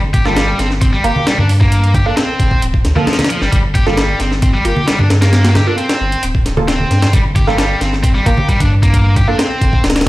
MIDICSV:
0, 0, Header, 1, 5, 480
1, 0, Start_track
1, 0, Key_signature, -2, "minor"
1, 0, Tempo, 451128
1, 1827, Time_signature, 4, 2, 24, 8
1, 10733, End_track
2, 0, Start_track
2, 0, Title_t, "Synth stab"
2, 0, Program_c, 0, 62
2, 271, Note_on_c, 0, 58, 95
2, 271, Note_on_c, 0, 65, 83
2, 271, Note_on_c, 0, 69, 101
2, 497, Note_off_c, 0, 58, 0
2, 497, Note_off_c, 0, 65, 0
2, 497, Note_off_c, 0, 69, 0
2, 1107, Note_on_c, 0, 65, 70
2, 1107, Note_on_c, 0, 70, 87
2, 1108, Note_on_c, 0, 58, 78
2, 1333, Note_off_c, 0, 65, 0
2, 1334, Note_off_c, 0, 58, 0
2, 1334, Note_off_c, 0, 70, 0
2, 2191, Note_on_c, 0, 65, 69
2, 2192, Note_on_c, 0, 58, 73
2, 2192, Note_on_c, 0, 69, 80
2, 2329, Note_off_c, 0, 58, 0
2, 2329, Note_off_c, 0, 65, 0
2, 2329, Note_off_c, 0, 69, 0
2, 3153, Note_on_c, 0, 58, 90
2, 3153, Note_on_c, 0, 65, 83
2, 3153, Note_on_c, 0, 69, 105
2, 3290, Note_off_c, 0, 58, 0
2, 3290, Note_off_c, 0, 65, 0
2, 3290, Note_off_c, 0, 69, 0
2, 4112, Note_on_c, 0, 58, 88
2, 4112, Note_on_c, 0, 65, 86
2, 4113, Note_on_c, 0, 69, 103
2, 4337, Note_off_c, 0, 58, 0
2, 4337, Note_off_c, 0, 65, 0
2, 4337, Note_off_c, 0, 69, 0
2, 4946, Note_on_c, 0, 70, 82
2, 4947, Note_on_c, 0, 65, 71
2, 4948, Note_on_c, 0, 58, 75
2, 5173, Note_off_c, 0, 65, 0
2, 5173, Note_off_c, 0, 70, 0
2, 5174, Note_off_c, 0, 58, 0
2, 6032, Note_on_c, 0, 65, 69
2, 6033, Note_on_c, 0, 58, 72
2, 6033, Note_on_c, 0, 69, 80
2, 6169, Note_off_c, 0, 58, 0
2, 6169, Note_off_c, 0, 65, 0
2, 6170, Note_off_c, 0, 69, 0
2, 6990, Note_on_c, 0, 65, 82
2, 6991, Note_on_c, 0, 58, 88
2, 6991, Note_on_c, 0, 69, 100
2, 7128, Note_off_c, 0, 65, 0
2, 7129, Note_off_c, 0, 58, 0
2, 7129, Note_off_c, 0, 69, 0
2, 7952, Note_on_c, 0, 58, 94
2, 7952, Note_on_c, 0, 65, 84
2, 7952, Note_on_c, 0, 69, 105
2, 8177, Note_off_c, 0, 58, 0
2, 8177, Note_off_c, 0, 65, 0
2, 8177, Note_off_c, 0, 69, 0
2, 8788, Note_on_c, 0, 65, 73
2, 8788, Note_on_c, 0, 70, 84
2, 8789, Note_on_c, 0, 58, 81
2, 9014, Note_off_c, 0, 58, 0
2, 9014, Note_off_c, 0, 65, 0
2, 9014, Note_off_c, 0, 70, 0
2, 9870, Note_on_c, 0, 58, 77
2, 9870, Note_on_c, 0, 69, 83
2, 9871, Note_on_c, 0, 65, 67
2, 10008, Note_off_c, 0, 58, 0
2, 10008, Note_off_c, 0, 69, 0
2, 10009, Note_off_c, 0, 65, 0
2, 10733, End_track
3, 0, Start_track
3, 0, Title_t, "Distorted electric guitar"
3, 0, Program_c, 1, 30
3, 147, Note_on_c, 1, 67, 76
3, 259, Note_off_c, 1, 67, 0
3, 269, Note_on_c, 1, 55, 69
3, 374, Note_off_c, 1, 55, 0
3, 386, Note_on_c, 1, 55, 75
3, 615, Note_off_c, 1, 55, 0
3, 626, Note_on_c, 1, 60, 100
3, 727, Note_off_c, 1, 60, 0
3, 866, Note_on_c, 1, 60, 79
3, 927, Note_off_c, 1, 60, 0
3, 992, Note_on_c, 1, 55, 73
3, 1101, Note_off_c, 1, 55, 0
3, 1107, Note_on_c, 1, 67, 76
3, 1336, Note_off_c, 1, 67, 0
3, 1346, Note_on_c, 1, 55, 78
3, 1458, Note_off_c, 1, 55, 0
3, 1469, Note_on_c, 1, 62, 70
3, 1564, Note_off_c, 1, 62, 0
3, 1710, Note_on_c, 1, 58, 69
3, 2055, Note_off_c, 1, 58, 0
3, 2066, Note_on_c, 1, 67, 70
3, 2178, Note_off_c, 1, 67, 0
3, 2191, Note_on_c, 1, 62, 96
3, 2295, Note_off_c, 1, 62, 0
3, 2305, Note_on_c, 1, 60, 71
3, 2775, Note_off_c, 1, 60, 0
3, 3151, Note_on_c, 1, 53, 77
3, 3245, Note_off_c, 1, 53, 0
3, 3266, Note_on_c, 1, 53, 82
3, 3367, Note_off_c, 1, 53, 0
3, 3509, Note_on_c, 1, 53, 72
3, 3626, Note_off_c, 1, 53, 0
3, 3631, Note_on_c, 1, 55, 70
3, 3725, Note_off_c, 1, 55, 0
3, 3745, Note_on_c, 1, 55, 77
3, 3806, Note_off_c, 1, 55, 0
3, 3988, Note_on_c, 1, 67, 72
3, 4099, Note_off_c, 1, 67, 0
3, 4111, Note_on_c, 1, 55, 68
3, 4215, Note_off_c, 1, 55, 0
3, 4228, Note_on_c, 1, 55, 75
3, 4456, Note_off_c, 1, 55, 0
3, 4468, Note_on_c, 1, 60, 96
3, 4568, Note_off_c, 1, 60, 0
3, 4709, Note_on_c, 1, 60, 82
3, 4769, Note_off_c, 1, 60, 0
3, 4832, Note_on_c, 1, 55, 74
3, 4941, Note_off_c, 1, 55, 0
3, 4945, Note_on_c, 1, 67, 75
3, 5175, Note_off_c, 1, 67, 0
3, 5185, Note_on_c, 1, 55, 82
3, 5298, Note_off_c, 1, 55, 0
3, 5310, Note_on_c, 1, 62, 69
3, 5404, Note_off_c, 1, 62, 0
3, 5551, Note_on_c, 1, 58, 69
3, 5895, Note_off_c, 1, 58, 0
3, 5907, Note_on_c, 1, 67, 72
3, 6019, Note_off_c, 1, 67, 0
3, 6032, Note_on_c, 1, 62, 101
3, 6136, Note_off_c, 1, 62, 0
3, 6146, Note_on_c, 1, 60, 77
3, 6615, Note_off_c, 1, 60, 0
3, 7107, Note_on_c, 1, 60, 81
3, 7575, Note_off_c, 1, 60, 0
3, 7589, Note_on_c, 1, 55, 87
3, 7648, Note_off_c, 1, 55, 0
3, 7827, Note_on_c, 1, 67, 78
3, 7939, Note_off_c, 1, 67, 0
3, 7952, Note_on_c, 1, 55, 74
3, 8056, Note_off_c, 1, 55, 0
3, 8069, Note_on_c, 1, 55, 76
3, 8296, Note_off_c, 1, 55, 0
3, 8306, Note_on_c, 1, 60, 105
3, 8407, Note_off_c, 1, 60, 0
3, 8546, Note_on_c, 1, 60, 82
3, 8607, Note_off_c, 1, 60, 0
3, 8671, Note_on_c, 1, 55, 73
3, 8781, Note_off_c, 1, 55, 0
3, 8788, Note_on_c, 1, 67, 77
3, 9016, Note_off_c, 1, 67, 0
3, 9029, Note_on_c, 1, 55, 80
3, 9140, Note_off_c, 1, 55, 0
3, 9155, Note_on_c, 1, 62, 74
3, 9247, Note_off_c, 1, 62, 0
3, 9394, Note_on_c, 1, 58, 70
3, 9737, Note_off_c, 1, 58, 0
3, 9748, Note_on_c, 1, 67, 70
3, 9860, Note_off_c, 1, 67, 0
3, 9874, Note_on_c, 1, 62, 99
3, 9977, Note_off_c, 1, 62, 0
3, 9992, Note_on_c, 1, 60, 79
3, 10458, Note_off_c, 1, 60, 0
3, 10733, End_track
4, 0, Start_track
4, 0, Title_t, "Sub bass"
4, 0, Program_c, 2, 38
4, 0, Note_on_c, 2, 31, 98
4, 568, Note_off_c, 2, 31, 0
4, 629, Note_on_c, 2, 31, 78
4, 1048, Note_off_c, 2, 31, 0
4, 1108, Note_on_c, 2, 31, 91
4, 1192, Note_off_c, 2, 31, 0
4, 1473, Note_on_c, 2, 43, 80
4, 2128, Note_off_c, 2, 43, 0
4, 2550, Note_on_c, 2, 31, 73
4, 2714, Note_off_c, 2, 31, 0
4, 2791, Note_on_c, 2, 26, 87
4, 3024, Note_off_c, 2, 26, 0
4, 3030, Note_on_c, 2, 38, 80
4, 3113, Note_off_c, 2, 38, 0
4, 3633, Note_on_c, 2, 31, 100
4, 3710, Note_off_c, 2, 31, 0
4, 3750, Note_on_c, 2, 31, 97
4, 4409, Note_off_c, 2, 31, 0
4, 4469, Note_on_c, 2, 31, 78
4, 4888, Note_off_c, 2, 31, 0
4, 4951, Note_on_c, 2, 31, 92
4, 5033, Note_off_c, 2, 31, 0
4, 5314, Note_on_c, 2, 43, 82
4, 5968, Note_off_c, 2, 43, 0
4, 6391, Note_on_c, 2, 31, 75
4, 6554, Note_off_c, 2, 31, 0
4, 6631, Note_on_c, 2, 26, 92
4, 7289, Note_off_c, 2, 26, 0
4, 7348, Note_on_c, 2, 43, 98
4, 7513, Note_off_c, 2, 43, 0
4, 7590, Note_on_c, 2, 31, 92
4, 8249, Note_off_c, 2, 31, 0
4, 8306, Note_on_c, 2, 31, 75
4, 8727, Note_off_c, 2, 31, 0
4, 8790, Note_on_c, 2, 31, 90
4, 8873, Note_off_c, 2, 31, 0
4, 9154, Note_on_c, 2, 43, 84
4, 9808, Note_off_c, 2, 43, 0
4, 10230, Note_on_c, 2, 31, 76
4, 10394, Note_off_c, 2, 31, 0
4, 10467, Note_on_c, 2, 26, 92
4, 10733, Note_off_c, 2, 26, 0
4, 10733, End_track
5, 0, Start_track
5, 0, Title_t, "Drums"
5, 147, Note_on_c, 9, 42, 69
5, 148, Note_on_c, 9, 36, 91
5, 148, Note_on_c, 9, 63, 66
5, 254, Note_off_c, 9, 36, 0
5, 254, Note_off_c, 9, 42, 0
5, 254, Note_off_c, 9, 63, 0
5, 271, Note_on_c, 9, 38, 49
5, 378, Note_off_c, 9, 38, 0
5, 387, Note_on_c, 9, 38, 118
5, 387, Note_on_c, 9, 42, 88
5, 494, Note_off_c, 9, 38, 0
5, 494, Note_off_c, 9, 42, 0
5, 629, Note_on_c, 9, 38, 39
5, 629, Note_on_c, 9, 42, 66
5, 736, Note_off_c, 9, 38, 0
5, 736, Note_off_c, 9, 42, 0
5, 751, Note_on_c, 9, 38, 34
5, 858, Note_off_c, 9, 38, 0
5, 867, Note_on_c, 9, 42, 85
5, 868, Note_on_c, 9, 36, 110
5, 973, Note_off_c, 9, 42, 0
5, 975, Note_off_c, 9, 36, 0
5, 1108, Note_on_c, 9, 42, 68
5, 1215, Note_off_c, 9, 42, 0
5, 1235, Note_on_c, 9, 63, 94
5, 1341, Note_off_c, 9, 63, 0
5, 1349, Note_on_c, 9, 38, 113
5, 1349, Note_on_c, 9, 42, 78
5, 1455, Note_off_c, 9, 38, 0
5, 1455, Note_off_c, 9, 42, 0
5, 1469, Note_on_c, 9, 63, 94
5, 1576, Note_off_c, 9, 63, 0
5, 1589, Note_on_c, 9, 46, 81
5, 1696, Note_off_c, 9, 46, 0
5, 1713, Note_on_c, 9, 36, 96
5, 1820, Note_off_c, 9, 36, 0
5, 1829, Note_on_c, 9, 42, 85
5, 1935, Note_off_c, 9, 42, 0
5, 1954, Note_on_c, 9, 42, 43
5, 2060, Note_off_c, 9, 42, 0
5, 2068, Note_on_c, 9, 63, 63
5, 2069, Note_on_c, 9, 36, 94
5, 2069, Note_on_c, 9, 42, 67
5, 2174, Note_off_c, 9, 63, 0
5, 2175, Note_off_c, 9, 36, 0
5, 2176, Note_off_c, 9, 42, 0
5, 2308, Note_on_c, 9, 38, 115
5, 2308, Note_on_c, 9, 42, 82
5, 2415, Note_off_c, 9, 38, 0
5, 2415, Note_off_c, 9, 42, 0
5, 2549, Note_on_c, 9, 36, 94
5, 2550, Note_on_c, 9, 42, 65
5, 2656, Note_off_c, 9, 36, 0
5, 2656, Note_off_c, 9, 42, 0
5, 2674, Note_on_c, 9, 36, 87
5, 2780, Note_off_c, 9, 36, 0
5, 2791, Note_on_c, 9, 42, 85
5, 2898, Note_off_c, 9, 42, 0
5, 2914, Note_on_c, 9, 36, 89
5, 3020, Note_off_c, 9, 36, 0
5, 3029, Note_on_c, 9, 38, 49
5, 3029, Note_on_c, 9, 42, 66
5, 3136, Note_off_c, 9, 38, 0
5, 3136, Note_off_c, 9, 42, 0
5, 3148, Note_on_c, 9, 63, 96
5, 3255, Note_off_c, 9, 63, 0
5, 3268, Note_on_c, 9, 38, 86
5, 3268, Note_on_c, 9, 42, 63
5, 3330, Note_off_c, 9, 38, 0
5, 3330, Note_off_c, 9, 42, 0
5, 3330, Note_on_c, 9, 38, 81
5, 3330, Note_on_c, 9, 42, 62
5, 3392, Note_off_c, 9, 38, 0
5, 3392, Note_off_c, 9, 42, 0
5, 3392, Note_on_c, 9, 38, 89
5, 3392, Note_on_c, 9, 42, 70
5, 3394, Note_on_c, 9, 63, 87
5, 3452, Note_off_c, 9, 38, 0
5, 3452, Note_off_c, 9, 42, 0
5, 3452, Note_on_c, 9, 38, 90
5, 3452, Note_on_c, 9, 42, 64
5, 3500, Note_off_c, 9, 63, 0
5, 3511, Note_off_c, 9, 42, 0
5, 3511, Note_on_c, 9, 42, 69
5, 3558, Note_off_c, 9, 38, 0
5, 3618, Note_off_c, 9, 42, 0
5, 3635, Note_on_c, 9, 38, 42
5, 3742, Note_off_c, 9, 38, 0
5, 3750, Note_on_c, 9, 36, 102
5, 3750, Note_on_c, 9, 42, 83
5, 3856, Note_off_c, 9, 36, 0
5, 3857, Note_off_c, 9, 42, 0
5, 3984, Note_on_c, 9, 63, 65
5, 3990, Note_on_c, 9, 36, 90
5, 3990, Note_on_c, 9, 42, 68
5, 4090, Note_off_c, 9, 63, 0
5, 4096, Note_off_c, 9, 36, 0
5, 4097, Note_off_c, 9, 42, 0
5, 4114, Note_on_c, 9, 38, 48
5, 4221, Note_off_c, 9, 38, 0
5, 4228, Note_on_c, 9, 38, 115
5, 4228, Note_on_c, 9, 42, 83
5, 4334, Note_off_c, 9, 38, 0
5, 4334, Note_off_c, 9, 42, 0
5, 4466, Note_on_c, 9, 38, 41
5, 4466, Note_on_c, 9, 42, 64
5, 4572, Note_off_c, 9, 38, 0
5, 4572, Note_off_c, 9, 42, 0
5, 4592, Note_on_c, 9, 38, 37
5, 4698, Note_off_c, 9, 38, 0
5, 4706, Note_on_c, 9, 42, 84
5, 4708, Note_on_c, 9, 36, 108
5, 4812, Note_off_c, 9, 42, 0
5, 4815, Note_off_c, 9, 36, 0
5, 4947, Note_on_c, 9, 42, 68
5, 5053, Note_off_c, 9, 42, 0
5, 5070, Note_on_c, 9, 63, 86
5, 5177, Note_off_c, 9, 63, 0
5, 5188, Note_on_c, 9, 38, 107
5, 5188, Note_on_c, 9, 42, 85
5, 5294, Note_off_c, 9, 38, 0
5, 5294, Note_off_c, 9, 42, 0
5, 5309, Note_on_c, 9, 63, 92
5, 5415, Note_off_c, 9, 63, 0
5, 5429, Note_on_c, 9, 38, 102
5, 5429, Note_on_c, 9, 42, 79
5, 5536, Note_off_c, 9, 38, 0
5, 5536, Note_off_c, 9, 42, 0
5, 5554, Note_on_c, 9, 38, 107
5, 5554, Note_on_c, 9, 42, 82
5, 5660, Note_off_c, 9, 38, 0
5, 5660, Note_off_c, 9, 42, 0
5, 5669, Note_on_c, 9, 38, 102
5, 5669, Note_on_c, 9, 42, 74
5, 5775, Note_off_c, 9, 38, 0
5, 5775, Note_off_c, 9, 42, 0
5, 5793, Note_on_c, 9, 38, 106
5, 5793, Note_on_c, 9, 42, 81
5, 5900, Note_off_c, 9, 38, 0
5, 5900, Note_off_c, 9, 42, 0
5, 5908, Note_on_c, 9, 38, 108
5, 5908, Note_on_c, 9, 42, 76
5, 5912, Note_on_c, 9, 63, 64
5, 6014, Note_off_c, 9, 38, 0
5, 6014, Note_off_c, 9, 42, 0
5, 6018, Note_off_c, 9, 63, 0
5, 6148, Note_on_c, 9, 42, 63
5, 6254, Note_off_c, 9, 42, 0
5, 6271, Note_on_c, 9, 38, 102
5, 6271, Note_on_c, 9, 42, 75
5, 6378, Note_off_c, 9, 38, 0
5, 6378, Note_off_c, 9, 42, 0
5, 6515, Note_on_c, 9, 42, 55
5, 6621, Note_off_c, 9, 42, 0
5, 6626, Note_on_c, 9, 42, 89
5, 6733, Note_off_c, 9, 42, 0
5, 6753, Note_on_c, 9, 36, 91
5, 6860, Note_off_c, 9, 36, 0
5, 6871, Note_on_c, 9, 38, 48
5, 6871, Note_on_c, 9, 42, 68
5, 6978, Note_off_c, 9, 38, 0
5, 6978, Note_off_c, 9, 42, 0
5, 6992, Note_on_c, 9, 63, 97
5, 7099, Note_off_c, 9, 63, 0
5, 7109, Note_on_c, 9, 38, 98
5, 7109, Note_on_c, 9, 42, 79
5, 7215, Note_off_c, 9, 38, 0
5, 7215, Note_off_c, 9, 42, 0
5, 7236, Note_on_c, 9, 63, 84
5, 7343, Note_off_c, 9, 63, 0
5, 7350, Note_on_c, 9, 38, 39
5, 7350, Note_on_c, 9, 42, 60
5, 7457, Note_off_c, 9, 38, 0
5, 7457, Note_off_c, 9, 42, 0
5, 7474, Note_on_c, 9, 38, 108
5, 7474, Note_on_c, 9, 42, 80
5, 7580, Note_off_c, 9, 38, 0
5, 7580, Note_off_c, 9, 42, 0
5, 7589, Note_on_c, 9, 36, 109
5, 7589, Note_on_c, 9, 42, 88
5, 7695, Note_off_c, 9, 42, 0
5, 7696, Note_off_c, 9, 36, 0
5, 7825, Note_on_c, 9, 63, 64
5, 7829, Note_on_c, 9, 36, 98
5, 7829, Note_on_c, 9, 42, 71
5, 7932, Note_off_c, 9, 63, 0
5, 7935, Note_off_c, 9, 36, 0
5, 7935, Note_off_c, 9, 42, 0
5, 7954, Note_on_c, 9, 38, 45
5, 8061, Note_off_c, 9, 38, 0
5, 8069, Note_on_c, 9, 38, 112
5, 8069, Note_on_c, 9, 42, 87
5, 8175, Note_off_c, 9, 38, 0
5, 8175, Note_off_c, 9, 42, 0
5, 8311, Note_on_c, 9, 38, 42
5, 8311, Note_on_c, 9, 42, 63
5, 8418, Note_off_c, 9, 38, 0
5, 8418, Note_off_c, 9, 42, 0
5, 8436, Note_on_c, 9, 38, 36
5, 8543, Note_off_c, 9, 38, 0
5, 8550, Note_on_c, 9, 36, 110
5, 8551, Note_on_c, 9, 42, 88
5, 8656, Note_off_c, 9, 36, 0
5, 8658, Note_off_c, 9, 42, 0
5, 8790, Note_on_c, 9, 36, 97
5, 8792, Note_on_c, 9, 42, 82
5, 8896, Note_off_c, 9, 36, 0
5, 8899, Note_off_c, 9, 42, 0
5, 8910, Note_on_c, 9, 63, 98
5, 9017, Note_off_c, 9, 63, 0
5, 9029, Note_on_c, 9, 36, 81
5, 9032, Note_on_c, 9, 42, 57
5, 9136, Note_off_c, 9, 36, 0
5, 9138, Note_off_c, 9, 42, 0
5, 9151, Note_on_c, 9, 63, 79
5, 9153, Note_on_c, 9, 36, 101
5, 9155, Note_on_c, 9, 42, 79
5, 9258, Note_off_c, 9, 63, 0
5, 9260, Note_off_c, 9, 36, 0
5, 9261, Note_off_c, 9, 42, 0
5, 9393, Note_on_c, 9, 36, 87
5, 9395, Note_on_c, 9, 42, 64
5, 9500, Note_off_c, 9, 36, 0
5, 9502, Note_off_c, 9, 42, 0
5, 9509, Note_on_c, 9, 36, 97
5, 9510, Note_on_c, 9, 42, 75
5, 9616, Note_off_c, 9, 36, 0
5, 9617, Note_off_c, 9, 42, 0
5, 9744, Note_on_c, 9, 63, 62
5, 9749, Note_on_c, 9, 36, 83
5, 9751, Note_on_c, 9, 42, 61
5, 9850, Note_off_c, 9, 63, 0
5, 9856, Note_off_c, 9, 36, 0
5, 9857, Note_off_c, 9, 42, 0
5, 9991, Note_on_c, 9, 38, 112
5, 9991, Note_on_c, 9, 42, 91
5, 10097, Note_off_c, 9, 38, 0
5, 10097, Note_off_c, 9, 42, 0
5, 10229, Note_on_c, 9, 36, 93
5, 10231, Note_on_c, 9, 42, 65
5, 10336, Note_off_c, 9, 36, 0
5, 10337, Note_off_c, 9, 42, 0
5, 10354, Note_on_c, 9, 36, 90
5, 10460, Note_off_c, 9, 36, 0
5, 10469, Note_on_c, 9, 38, 89
5, 10469, Note_on_c, 9, 42, 65
5, 10532, Note_off_c, 9, 38, 0
5, 10532, Note_off_c, 9, 42, 0
5, 10532, Note_on_c, 9, 38, 89
5, 10532, Note_on_c, 9, 42, 68
5, 10595, Note_off_c, 9, 38, 0
5, 10595, Note_off_c, 9, 42, 0
5, 10595, Note_on_c, 9, 38, 87
5, 10595, Note_on_c, 9, 42, 64
5, 10652, Note_off_c, 9, 38, 0
5, 10652, Note_off_c, 9, 42, 0
5, 10652, Note_on_c, 9, 38, 87
5, 10652, Note_on_c, 9, 42, 65
5, 10733, Note_off_c, 9, 38, 0
5, 10733, Note_off_c, 9, 42, 0
5, 10733, End_track
0, 0, End_of_file